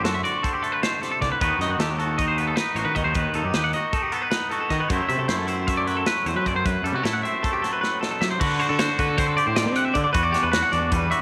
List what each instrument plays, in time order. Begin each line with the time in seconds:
Already playing: clean electric guitar D3 A3 C4
0.03 picked electric bass F#2, clean electric guitar F#4 A4, snare, closed hi-hat
0.14 clean electric guitar E5
0.24 clean electric guitar F#4 D5, closed hi-hat
0.43 clean electric guitar C4 A4, kick, closed hi-hat
0.53 clean electric guitar G4
0.63 clean electric guitar A3 A4, closed hi-hat
0.72 clean electric guitar B4
0.82 clean electric guitar B2 C5, snare, closed hi-hat
1.02 clean electric guitar C3 A4, snare, closed hi-hat
1.12 clean electric guitar A4
1.21 picked electric bass C2, clean electric guitar D3 D5, kick, snare, closed hi-hat
1.32 clean electric guitar B4
1.41 picked electric bass D#2, clean electric guitar D#3 B3 D#4 F#4 B4, kick, closed hi-hat
1.59 picked electric bass F#2, clean electric guitar D#4 D#5, snare, closed hi-hat
1.69 picked electric bass F#2, clean electric guitar F#4
1.78 picked electric bass D#2, clean electric guitar G4 A4, snare, closed hi-hat
1.90 clean electric guitar F#4
1.99 clean electric guitar F#4 A4, closed hi-hat
2.18 clean electric guitar D#4 D#5, kick, closed hi-hat
2.28 clean electric guitar C5
2.38 clean electric guitar B3 B4, closed hi-hat
2.47 clean electric guitar A4
2.56 clean electric guitar B4, snare, closed hi-hat
2.60 clean electric guitar D#4
2.75 picked electric bass A1, clean electric guitar F#4 C5, closed hi-hat
2.85 picked electric bass D#3, clean electric guitar B4
2.95 picked electric bass D#2, clean electric guitar D#3 D#5, kick, closed hi-hat
3.04 picked electric bass D#2, clean electric guitar C5
3.14 picked electric bass D#2, clean electric guitar D#3 B4, kick, closed hi-hat
3.34 picked electric bass D#2, clean electric guitar D#4 A4, closed hi-hat
3.44 picked electric bass F#2, clean electric guitar G4
3.54 picked electric bass D#2, clean electric guitar G4 B4, snare, closed hi-hat
3.64 clean electric guitar F#5
3.73 clean electric guitar F#4 D#5, closed hi-hat
3.93 clean electric guitar D#4 A4, kick, closed hi-hat
4.02 clean electric guitar G4
4.12 clean electric guitar B3 A4, closed hi-hat
4.22 clean electric guitar B4
4.31 clean electric guitar D#4 B4, snare, closed hi-hat
4.50 clean electric guitar F#4 A4, closed hi-hat
4.61 clean electric guitar A4
4.70 picked electric bass D#3, clean electric guitar D#3 D#5, kick, snare, closed hi-hat
4.80 clean electric guitar B4
4.88 picked electric bass F#2, clean electric guitar F#2 F#3 A3 C5, kick, closed hi-hat
4.93 clean electric guitar C4 E4
5.09 picked electric bass C3, clean electric guitar A3 E5, closed hi-hat
5.19 picked electric bass C3, clean electric guitar A4
5.28 picked electric bass F#2, clean electric guitar E4 C5, snare, closed hi-hat
5.38 clean electric guitar A4
5.47 clean electric guitar C4 C5, closed hi-hat
5.67 clean electric guitar A3 E5, kick, closed hi-hat
5.77 clean electric guitar D5
5.87 clean electric guitar F#3 B4, closed hi-hat
5.97 clean electric guitar A4
6.06 clean electric guitar A3 B4, snare, closed hi-hat
6.26 picked electric bass E2, clean electric guitar C4 C5, closed hi-hat
6.36 picked electric bass F#3, clean electric guitar B4
6.46 picked electric bass F#2, clean electric guitar F#2 D5, kick, closed hi-hat
6.55 picked electric bass F#2, clean electric guitar C5
6.65 picked electric bass F#2, clean electric guitar F#2 B4, kick, closed hi-hat
6.83 picked electric bass F#2, clean electric guitar G3 A4, closed hi-hat
6.93 picked electric bass C3, clean electric guitar A3 F#4
7.03 picked electric bass A2, clean electric guitar E4 A4, snare, closed hi-hat
7.13 clean electric guitar F#5
7.23 clean electric guitar C4 E5, closed hi-hat
7.43 clean electric guitar A3 A4, kick, closed hi-hat
7.53 clean electric guitar G4
7.62 clean electric guitar F#3 A4, snare, closed hi-hat
7.73 clean electric guitar B4
7.81 clean electric guitar A2 B4, snare
8.01 clean electric guitar B2 A4, snare
8.11 clean electric guitar A4
8.21 clean electric guitar C3 E5, picked electric bass F#3, snare
8.31 clean electric guitar C5
8.39 clean electric guitar D3 F#4 B4, picked electric bass D3, kick, crash
8.60 clean electric guitar F#4 C5, closed hi-hat
8.69 picked electric bass D3, clean electric guitar A4
8.79 clean electric guitar F#4 C5, snare, closed hi-hat
8.99 picked electric bass D3, clean electric guitar F#4 B4, kick, closed hi-hat
9.08 clean electric guitar A4
9.18 picked electric bass D3, clean electric guitar C4 C5, kick, closed hi-hat
9.27 clean electric guitar A4
9.37 clean electric guitar G4 D5, closed hi-hat
9.47 picked electric bass A2, clean electric guitar C5
9.56 clean electric guitar B2 D5, snare, closed hi-hat
9.66 picked electric bass C4
9.76 clean electric guitar C3 F#5, closed hi-hat
9.85 clean electric guitar E5
9.94 picked electric bass D3, clean electric guitar D3 D5, kick, closed hi-hat
10.04 clean electric guitar D5
10.13 clean electric guitar E2 F#4 B4, picked electric bass E2, kick, closed hi-hat
10.23 clean electric guitar D5
10.32 clean electric guitar D4 G4, snare, closed hi-hat
10.43 picked electric bass E2, clean electric guitar B4
10.52 clean electric guitar F#4 B4, snare, closed hi-hat
10.63 clean electric guitar F#5
10.72 picked electric bass E2, clean electric guitar D4 D5, closed hi-hat
10.92 picked electric bass E2, clean electric guitar G3 B4, kick, closed hi-hat
11.11 clean electric guitar F#4 E5, closed hi-hat